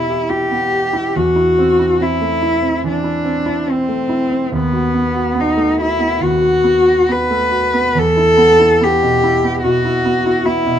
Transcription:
Already playing: grand piano B2 B3 E4 G4, cello E4
0.10 grand piano G4
0.30 grand piano E4, cello G4
0.51 grand piano B3
0.72 grand piano G4
0.93 grand piano E4
1.15 grand piano E2, cello F#4
1.36 grand piano E4
1.58 grand piano C4
1.79 grand piano E4
2.01 grand piano C4, cello E4
2.21 grand piano A3
2.43 grand piano E4
2.62 grand piano C4
2.84 grand piano E3
2.88 cello D4
3.04 grand piano E4
3.25 grand piano C4
3.46 grand piano E4
3.67 grand piano C4
3.71 cello C4
3.89 grand piano A3
4.09 grand piano E4
4.31 grand piano C4
4.52 grand piano D#2
4.57 cello B3
4.73 grand piano F#4
4.95 grand piano B3
5.14 grand piano F#4
5.35 grand piano B3
5.39 cello D#4
5.57 grand piano A3
5.79 cello E4, grand piano F#4
6.00 grand piano B3
6.21 grand piano D#2, cello F#4
6.42 grand piano F#4
6.64 grand piano B3
6.88 grand piano F#4
7.09 grand piano B3, cello B4
7.31 grand piano A3
7.52 grand piano F#4
7.73 grand piano B3
7.95 grand piano E2, cello A4
8.17 grand piano E4
8.37 grand piano B3
8.60 grand piano E4
8.81 grand piano B3, cello G4
9.03 grand piano B2
9.24 grand piano E4
9.44 grand piano B3
9.63 grand piano B2, cello F#4
9.85 grand piano E4
10.05 grand piano B3
10.26 grand piano E4
10.45 grand piano B3, cello E4
10.67 grand piano B2

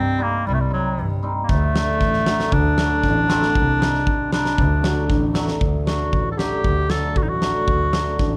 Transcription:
Already playing: double bass G2, hammered dulcimer G3, clarinet C4
0.18 hammered dulcimer G3 C4 D#4, clarinet A#3
0.46 double bass C2, clarinet G3
0.54 clarinet A3
0.60 clarinet G3
0.70 clarinet F#3, hammered dulcimer G3 C4 D#4
0.97 double bass G2
1.23 hammered dulcimer G3 C4 D#4
1.43 clarinet A#3
1.49 double bass D2, clarinet A3, kick, snare
1.74 hammered dulcimer F#3 A3 D4, snare
2.00 double bass A1, kick, snare
2.13 snare
2.26 hammered dulcimer F#3 A3 D4, snare
2.40 snare
2.52 double bass D2, clarinet D4, kick
2.77 hammered dulcimer F#3 A3 D4, snare
3.03 double bass A1, kick, snare
3.28 hammered dulcimer F#3 A3 C4, snare
3.42 snare
3.55 double bass C2, kick
3.79 hammered dulcimer G3 C4 D#4, snare
3.95 snare
4.07 double bass C2, kick
4.32 hammered dulcimer G3 C4 D#4, clarinet D4, snare
4.45 snare
4.58 double bass D2, kick
4.82 hammered dulcimer F#3 A3 D4, alto flute F#4, snare
5.09 double bass A1, alto flute D4, kick, snare
5.34 hammered dulcimer F#3 A3 D4, snare
5.48 snare
5.61 double bass D2, kick
5.86 hammered dulcimer F#3 A3 D4, clarinet F#4, snare
6.13 double bass A1, kick
6.32 clarinet A4
6.38 hammered dulcimer F#3 A3 D4, clarinet G4, snare
6.64 double bass D2, kick
6.89 hammered dulcimer F#3 A3 D4, clarinet A4, snare
7.16 double bass A1, clarinet F#4, kick
7.23 clarinet D#4
7.29 clarinet F#4
7.41 hammered dulcimer F#3 A3 D4, snare
7.68 double bass D2, kick
7.93 hammered dulcimer F#3 A3 D4, alto flute F#4, snare
8.19 double bass A1, alto flute D4, kick, snare

